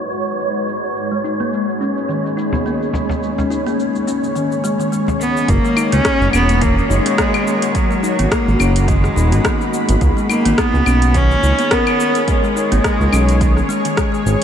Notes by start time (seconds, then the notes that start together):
Already playing: G#3 D#4 F#4 B4 C#5
0.12 cabasa
0.28 cabasa
0.40 cabasa
0.56 cabasa
0.68 cabasa
0.85 cabasa
0.96 C#4 B5, cabasa
1.12 G#3, cabasa
1.24 D#4, cabasa
1.40 A#3, cabasa
1.53 cabasa
1.69 cabasa
1.81 C#4, cabasa
1.98 cabasa
2.09 D#3, cabasa
2.26 cabasa
2.37 D#4, cabasa
2.53 B3, frame drum, cabasa
2.66 A#3, cabasa
2.83 cabasa
2.94 frame drum, cabasa
3.09 frame drum, cabasa
3.22 C#5, cabasa
3.38 G#3, frame drum, cabasa
3.50 D#4, cabasa
3.67 A#3, cabasa
3.80 cabasa
3.95 cabasa
4.07 C#4, cabasa
4.24 cabasa
4.36 D#3, cabasa
4.52 cabasa
4.64 G#3, cabasa
4.80 D#3, cabasa
4.92 G#3, cabasa
5.08 frame drum, cabasa
5.21 B3, cabasa
5.37 cabasa
5.48 F#1 A#3 F#4 C#5, kick, closed hi-hat, cabasa
5.65 G#3, cabasa
5.77 D#4, cabasa, claves
5.92 C#2 A#3 C#4, closed hi-hat, cabasa
6.05 kick, cross-stick, closed hi-hat, cabasa
6.21 F#1, cabasa
6.33 E1 B3 C#4, cabasa, claves
6.49 closed hi-hat, cabasa
6.61 D#3 A#3, kick, closed hi-hat, cabasa
6.78 cabasa
6.90 F#1 G#3 D#4, cabasa
7.06 A#3, closed hi-hat, cabasa
7.18 A#3, kick, cross-stick, closed hi-hat, cabasa
7.34 cabasa, claves
7.47 cabasa
7.62 closed hi-hat, cabasa
7.74 F#3 G#3 D#4 B5, kick, closed hi-hat, cabasa
7.91 G#3, cabasa
8.03 D#4, cabasa
8.19 G#1 A#3, closed hi-hat, cabasa
8.31 A#3, kick, cross-stick, closed hi-hat, cabasa
8.48 G#1, cabasa
8.60 F#1 C#4, cabasa, claves
8.76 closed hi-hat, cabasa
8.88 D#3 G#3, kick, closed hi-hat, cabasa
9.04 cross-stick, cabasa
9.16 D#1 D#4, cabasa
9.32 G#1 B3, closed hi-hat, cabasa
9.44 A#3, kick, cross-stick, closed hi-hat, cabasa
9.61 cabasa
9.74 cabasa
9.89 G#1, closed hi-hat, cabasa
10.01 C#2 G#4 C#5, kick, closed hi-hat, cabasa
10.17 G#3, cabasa
10.30 A#3 D#4, cabasa, claves
10.45 G#1 A#3, closed hi-hat, cabasa
10.58 B3, kick, cross-stick, closed hi-hat, cabasa
10.74 C#2, cabasa
10.86 B1 C#4, cabasa, claves
11.02 closed hi-hat, cabasa
11.14 D#3 C#4, kick, closed hi-hat, cabasa
11.31 cabasa
11.43 C#2 D#4, cabasa
11.59 B3, closed hi-hat, cabasa
11.71 B3 A#4, kick, cross-stick, closed hi-hat, cabasa
11.87 cabasa, claves
12.00 cabasa
12.15 closed hi-hat, cabasa
12.28 G#3, kick, closed hi-hat, cabasa
12.44 G#3, cabasa
12.56 D#4, cabasa
12.72 G#1 A#3, closed hi-hat, cabasa
12.84 kick, cross-stick, closed hi-hat, cabasa
13.00 C#2, cabasa
13.13 B1 C#4, cabasa, claves
13.29 closed hi-hat, cabasa
13.41 D#3, kick, closed hi-hat, cabasa
13.57 cross-stick, cabasa
13.69 G#3, cabasa
13.85 D#3, closed hi-hat, cabasa
13.97 G#3, kick, cross-stick, closed hi-hat, cabasa
14.14 cabasa
14.26 G#1, cabasa